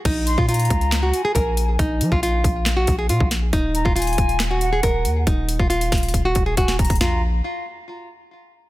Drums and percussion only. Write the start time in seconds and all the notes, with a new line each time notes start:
0.05 kick, closed hi-hat, crash
0.27 closed hi-hat
0.38 kick
0.49 closed hi-hat
0.54 closed hi-hat
0.59 closed hi-hat
0.65 closed hi-hat
0.70 kick, closed hi-hat
0.81 closed hi-hat
0.92 snare, clap, closed hi-hat
1.14 closed hi-hat
1.35 kick, closed hi-hat
1.57 closed hi-hat
1.79 kick, closed hi-hat
2.01 closed hi-hat
2.12 kick
2.23 closed hi-hat
2.44 kick, closed hi-hat
2.66 snare, clap, closed hi-hat
2.87 kick, closed hi-hat
3.09 closed hi-hat
3.20 kick
3.31 snare, closed hi-hat
3.53 kick, closed hi-hat
3.75 closed hi-hat
3.86 kick
3.96 closed hi-hat
4.02 closed hi-hat
4.07 closed hi-hat
4.13 closed hi-hat
4.18 kick, closed hi-hat
4.29 closed hi-hat
4.40 snare, clap, closed hi-hat
4.61 closed hi-hat
4.83 kick, closed hi-hat
5.05 closed hi-hat
5.27 kick, closed hi-hat
5.49 closed hi-hat
5.59 kick
5.70 closed hi-hat
5.81 closed hi-hat
5.92 kick, snare, closed hi-hat, open hi-hat
5.98 closed hi-hat
6.03 closed hi-hat
6.08 closed hi-hat
6.14 kick, closed hi-hat
6.35 kick, closed hi-hat
6.57 kick, closed hi-hat
6.68 snare
6.79 kick, closed hi-hat
6.85 closed hi-hat
6.90 kick, closed hi-hat
6.95 closed hi-hat
7.01 snare, floor tom